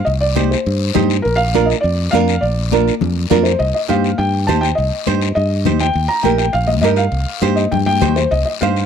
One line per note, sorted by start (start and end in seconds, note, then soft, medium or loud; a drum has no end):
0.05 0.54 C2 loud
0.05 0.10 D#5 medium
0.05 long guiro medium
0.21 0.48 D5 loud
0.35 0.56 D#4 medium
0.35 0.57 G4 medium
0.35 0.57 C5 medium
0.35 high conga medium
0.35 short guiro medium
0.51 0.92 C5 medium
0.51 short guiro medium
0.66 0.90 G2 loud
0.66 long guiro medium
0.94 1.20 G2 loud
0.94 1.15 D#4 medium
0.94 1.16 G4 medium
0.94 1.16 C5 medium
0.94 high conga medium
0.94 low conga medium
0.94 short guiro medium
1.10 short guiro medium
1.22 1.72 A#1 loud
1.22 1.37 A#4 loud
1.22 long guiro medium
1.36 1.65 F5 loud
1.54 1.75 D4 medium
1.54 1.75 F4 medium
1.54 1.75 A#4 medium
1.54 high conga medium
1.54 short guiro medium
1.66 1.71 D#5 medium
1.70 short guiro medium
1.81 2.07 F2 loud
1.81 2.09 D5 loud
1.81 long guiro medium
2.11 2.37 F2 loud
2.11 2.34 D4 medium
2.11 2.34 F4 medium
2.11 2.34 A#4 medium
2.11 2.42 F5 loud
2.11 high conga medium
2.11 short guiro medium
2.28 short guiro medium
2.41 2.89 A#1 loud
2.41 3.26 D5 medium
2.41 long guiro medium
2.72 2.92 D4 medium
2.72 2.93 F4 medium
2.72 2.93 A#4 medium
2.72 high conga medium
2.72 short guiro medium
2.88 short guiro medium
3.01 3.25 F2 loud
3.01 low conga medium
3.01 long guiro medium
3.30 3.54 F2 loud
3.30 3.51 D4 medium
3.30 3.51 F4 medium
3.30 3.51 A#4 loud
3.30 high conga medium
3.30 low conga medium
3.30 short guiro medium
3.43 3.58 C5 medium
3.43 short guiro medium
3.59 3.72 C2 loud
3.59 3.73 D#5 medium
3.59 long guiro medium
3.74 3.79 D#5 medium
3.88 4.13 G2 medium
3.88 4.09 D#4 medium
3.88 4.10 G4 medium
3.88 4.10 C5 medium
3.88 4.16 F5 medium
3.88 high conga medium
3.88 short guiro medium
4.04 short guiro medium
4.18 4.50 G2 loud
4.18 4.46 G5 loud
4.18 long guiro medium
4.47 4.72 D#2 medium
4.47 4.69 D#4 medium
4.47 4.69 G4 medium
4.47 4.69 C5 medium
4.47 4.63 A5 loud
4.47 high conga medium
4.47 short guiro medium
4.61 4.66 G5 loud
4.61 short guiro medium
4.75 4.90 C2 loud
4.75 5.34 D#5 medium
4.75 long guiro medium
5.06 5.31 G2 loud
5.06 5.27 D#4 medium
5.06 5.28 G4 medium
5.06 5.28 C5 medium
5.06 high conga medium
5.06 short guiro medium
5.21 short guiro medium
5.35 5.68 G2 loud
5.35 5.81 D#5 loud
5.35 long guiro medium
5.65 5.90 D#2 medium
5.65 5.86 D#4 medium
5.65 5.87 G4 medium
5.65 5.87 C5 medium
5.65 high conga medium
5.65 low conga medium
5.65 short guiro medium
5.79 6.08 G5 loud
5.79 short guiro medium
5.94 6.07 D#2 loud
5.94 long guiro medium
6.08 6.23 A#5 loud
6.23 6.48 A#1 loud
6.23 6.45 D#4 medium
6.23 6.45 G4 medium
6.23 6.46 A#4 medium
6.23 6.28 G5 loud
6.23 high conga medium
6.23 short guiro medium
6.38 6.53 G5 loud
6.38 short guiro medium
6.53 6.83 A#1 loud
6.53 6.67 F5 loud
6.53 long guiro medium
6.67 6.72 D#5 loud
6.67 high conga medium
6.81 7.07 G2 loud
6.81 7.04 D#4 medium
6.81 7.05 G4 medium
6.81 7.05 A#4 medium
6.81 6.86 D#5 loud
6.81 high conga medium
6.81 short guiro medium
6.96 7.53 F5 loud
6.96 short guiro medium
7.12 7.24 C2 loud
7.12 long guiro medium
7.41 7.66 G2 loud
7.41 7.63 D#4 medium
7.41 7.63 G4 medium
7.41 7.63 C5 loud
7.41 high conga medium
7.41 short guiro medium
7.56 7.70 D#5 medium
7.56 short guiro medium
7.71 8.03 G2 loud
7.71 7.76 G5 loud
7.71 low conga medium
7.71 long guiro medium
7.86 8.17 G5 loud
7.86 high conga medium
8.01 8.25 D#2 medium
8.01 8.22 D#4 medium
8.01 8.22 G4 medium
8.01 8.23 C5 medium
8.01 high conga medium
8.01 low conga medium
8.01 short guiro medium
8.16 8.30 C5 medium
8.16 short guiro medium
8.31 8.43 C2 loud
8.31 8.44 D#5 loud
8.31 long guiro medium
8.45 8.50 D#5 medium
8.61 8.85 G2 medium
8.61 8.82 D#4 medium
8.61 8.82 G4 medium
8.61 8.82 C5 medium
8.61 8.86 F5 loud
8.61 high conga medium
8.61 short guiro medium
8.76 short guiro medium